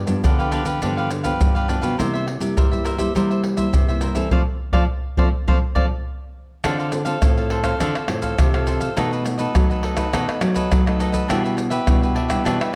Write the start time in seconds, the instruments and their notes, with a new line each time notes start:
Already playing: nylon-string guitar G2
0.07 nylon-string guitar G2 F3 B3 D4, pandeiro, maracas
0.24 nylon-string guitar D3, cavaquinho D4 G4 B4 F5, pandeiro, maracas, surdo
0.39 cavaquinho G4 B4 F5, pandeiro, maracas, surdo
0.51 nylon-string guitar F3 B3 D4, cavaquinho D4 G4 B4 F5, pandeiro, maracas
0.65 nylon-string guitar D3, cavaquinho G4 B4 F5, pandeiro, maracas, surdo
0.82 nylon-string guitar G2 D3 F3 B3 D4, cavaquinho D4 G4 B4 F5, pandeiro, maracas, surdo
0.97 cavaquinho G4 B4 F5, pandeiro, maracas
1.10 muted cavaquinho stroke, pandeiro, maracas
1.24 nylon-string guitar F3 B3 D4, cavaquinho G4 B4 F5, pandeiro, maracas, surdo
1.40 nylon-string guitar G2 D3, pandeiro, maracas, surdo
1.55 cavaquinho G4 B4 F5, pandeiro, maracas
1.68 nylon-string guitar F3 B3 D4, cavaquinho D4 G4 B4 F5, pandeiro, maracas, surdo
1.81 nylon-string guitar B2, cavaquinho G4 B4 F5, pandeiro, maracas, surdo
1.98 nylon-string guitar C3 G3 A#3 E4, cavaquinho A#4 C5 E5, pandeiro, maracas, surdo
2.14 cavaquinho C5 E5, pandeiro, maracas
2.27 muted cavaquinho stroke, pandeiro
2.40 nylon-string guitar C3 G3 A#3 E4, pandeiro, maracas
2.57 nylon-string guitar G2 G3, cavaquinho A#4 C5 E5, pandeiro, maracas, surdo
2.71 nylon-string guitar G3 A#3 E4, cavaquinho C5 E5, pandeiro, maracas, surdo
2.84 cavaquinho A#4 C5 E5, pandeiro, maracas
2.98 nylon-string guitar G3 A#3 E4, cavaquinho C5 E5, pandeiro, maracas, surdo
3.15 nylon-string guitar C3 G3 A#3 E4, cavaquinho A#4 C5 E5, pandeiro, maracas, surdo
3.30 cavaquinho C5 E5, pandeiro, maracas
3.43 muted cavaquinho stroke, pandeiro
3.57 nylon-string guitar G3 A#3 E4, cavaquinho C5 E5, pandeiro, maracas, surdo
3.73 nylon-string guitar G2 C3, pandeiro, maracas, surdo
3.88 nylon-string guitar G3 A#3 E4, cavaquinho C5 E5, pandeiro, maracas
4.01 cavaquinho A#4 C5 E5, pandeiro, maracas
4.15 nylon-string guitar E3 C4 D4 A4, cavaquinho C5 E5, pandeiro, maracas, surdo
4.31 nylon-string guitar F3 A3 C4, cavaquinho C5 D5 F5, surdo
4.72 nylon-string guitar F3 A3 C4, cavaquinho C5 D5 F5, surdo
5.17 nylon-string guitar F3 A3 C4, cavaquinho C5 D5 F5, surdo
5.48 nylon-string guitar F3 A3 C4, cavaquinho C5 D5 F5, surdo
5.75 nylon-string guitar F3 A3 C4, cavaquinho C5 D5 F5, surdo
6.64 nylon-string guitar D3 C4 F4 A4, cavaquinho D4 A4 C5 F5, pandeiro, tamborim, maracas, surdo
6.79 cavaquinho A4 C5 F5, pandeiro, maracas
6.92 nylon-string guitar C4 F4 A4, muted cavaquinho stroke, pandeiro, maracas
7.05 nylon-string guitar C4 F4 A4, cavaquinho A4 C5 F5, pandeiro, maracas
7.22 nylon-string guitar A2 C4 F4 A4, pandeiro, tamborim, maracas, surdo
7.37 cavaquinho A4 C5 F5, pandeiro, maracas, surdo
7.50 cavaquinho D4 A4 C5 F5, pandeiro
7.64 nylon-string guitar C4 F4 A4, cavaquinho A4 C5 F5, pandeiro, tamborim, maracas, surdo
7.80 nylon-string guitar D3, cavaquinho D4 A4 C5 F5, pandeiro, tamborim, maracas, surdo
7.95 cavaquinho A4 C5 F5, pandeiro, tamborim, maracas
8.08 nylon-string guitar A2 C4 F4 A4, muted cavaquinho stroke, pandeiro, tamborim
8.22 cavaquinho A4 C5 F5, pandeiro, maracas, surdo
8.38 nylon-string guitar A2 C3 C4 F4 A4, pandeiro, tamborim, maracas, surdo
8.54 nylon-string guitar C4 F4 A4, cavaquinho A4 C5 F5, pandeiro, tamborim, maracas
8.67 cavaquinho D4 A4 C5 F5, pandeiro, maracas, surdo
8.80 cavaquinho A4 C5 F5, pandeiro, maracas, surdo
8.96 nylon-string guitar B2 A3 D#4 F#4, cavaquinho D#4 A4 B4 D#5, pandeiro, tamborim, maracas, surdo
9.11 cavaquinho A4 B4 D#5, pandeiro, maracas
9.24 nylon-string guitar A3 D#4 F#4, muted cavaquinho stroke, pandeiro, maracas
9.38 nylon-string guitar A3 D#4 F#4, cavaquinho A4 B4 D#5, pandeiro, maracas
9.55 nylon-string guitar F#3 A3 D#4 F#4, pandeiro, tamborim, maracas, surdo
9.70 cavaquinho A4 B4 D#5, pandeiro, maracas, surdo
9.83 cavaquinho D#4 A4 B4 D#5, pandeiro
9.97 nylon-string guitar A3 D#4 F#4, cavaquinho A4 B4 D#5, pandeiro, tamborim, maracas, surdo
10.13 nylon-string guitar B2, cavaquinho D#4 A4 B4 D#5, pandeiro, tamborim, maracas, surdo
10.28 cavaquinho A4 B4 D#5, pandeiro, tamborim, maracas
10.41 nylon-string guitar F#3 A3 D#4 F#4, muted cavaquinho stroke, pandeiro, tamborim, maracas
10.54 cavaquinho A4 B4 D#5, pandeiro, maracas, surdo
10.72 nylon-string guitar F#3 A3 D#4 F#4, pandeiro, tamborim, maracas, surdo
10.86 nylon-string guitar A3 D#4 F#4, cavaquinho A4 B4 D#5, pandeiro, tamborim, maracas
10.99 cavaquinho D#4 A4 B4 D#5, pandeiro, maracas
11.12 cavaquinho A4 B4 D#5, pandeiro, maracas, surdo
11.28 nylon-string guitar B2 G3 D4 E4, cavaquinho D4 G4 B4 E5, pandeiro, tamborim, maracas, surdo
11.44 cavaquinho G4 B4 E5, pandeiro, maracas
11.57 muted cavaquinho stroke, pandeiro, maracas
11.70 cavaquinho G4 B4 E5, pandeiro, maracas
11.87 nylon-string guitar B2 G3 D4 E4, pandeiro, tamborim, maracas, surdo
12.02 cavaquinho G4 B4 E5, pandeiro, maracas, surdo
12.15 cavaquinho D4 G4 B4 E5, pandeiro
12.28 nylon-string guitar G3 D4 E4, cavaquinho G4 B4 E5, pandeiro, tamborim, maracas, surdo
12.45 nylon-string guitar B2, cavaquinho D4 G4 B4 E5, pandeiro, tamborim, maracas, surdo
12.60 cavaquinho G4 B4 E5, pandeiro, tamborim, maracas